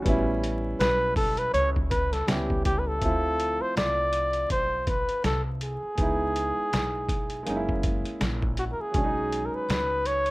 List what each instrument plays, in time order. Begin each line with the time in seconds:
Already playing: upright piano F#4
0.02 upright bass A1, upright piano G3 B3, kick, closed hi-hat
0.07 upright piano C#4 E4
0.44 closed hi-hat
0.80 upright bass B1, flugelhorn B4, snare, closed hi-hat
1.16 flugelhorn A4, kick, open hi-hat
1.37 flugelhorn B4, closed hi-hat
1.54 upright bass C#2, flugelhorn C#5, closed hi-hat
1.76 kick
1.91 flugelhorn B4, kick, closed hi-hat
2.13 flugelhorn A4, snare, closed hi-hat
2.27 upright bass C#2, upright piano G3 B3 C#4 E4, flugelhorn G4, snare, closed hi-hat
2.50 kick
2.65 flugelhorn G4, kick, closed hi-hat
2.79 flugelhorn B4
2.88 flugelhorn A4
2.99 upright bass D2, upright piano E3 A3, kick, closed hi-hat
3.03 upright piano F3 C4 E4
3.40 closed hi-hat
3.61 flugelhorn C5, muted upright bass stroke
3.76 upright bass C2, flugelhorn D5, snare, closed hi-hat
4.13 closed hi-hat
4.33 closed hi-hat
4.50 upright bass B1, flugelhorn C5, kick, closed hi-hat
4.87 flugelhorn B4, kick, closed hi-hat
5.09 muted upright bass stroke, closed hi-hat
5.24 upright bass C2, flugelhorn A4, snare, closed hi-hat
5.61 flugelhorn G#4, closed hi-hat
5.83 muted upright bass stroke
5.95 upright bass C#2, upright piano G#3 B3, kick, closed hi-hat
6.00 upright piano D#4 E4
6.36 closed hi-hat
6.57 muted upright bass stroke
6.73 upright bass B1, snare, closed hi-hat
7.09 kick, closed hi-hat
7.30 closed hi-hat
7.43 upright bass F#1, upright piano G#3 A#3, closed hi-hat
7.47 upright piano C#4 D#4
7.56 upright piano E4
7.69 kick
7.83 kick, closed hi-hat
8.05 muted upright bass stroke, closed hi-hat
8.21 upright bass A#1, snare, closed hi-hat
8.43 kick
8.57 flugelhorn F#4, closed hi-hat
8.72 flugelhorn A#4
8.80 flugelhorn G#4, muted upright bass stroke
8.91 upright bass B1, upright piano F#3 G#3, kick, closed hi-hat
8.96 upright piano C#4 D4
9.04 upright piano D#4
9.32 closed hi-hat
9.46 flugelhorn A#4
9.54 flugelhorn B4, muted upright bass stroke
9.69 upright bass C#2, snare, closed hi-hat
10.06 flugelhorn C#5, closed hi-hat
10.26 closed hi-hat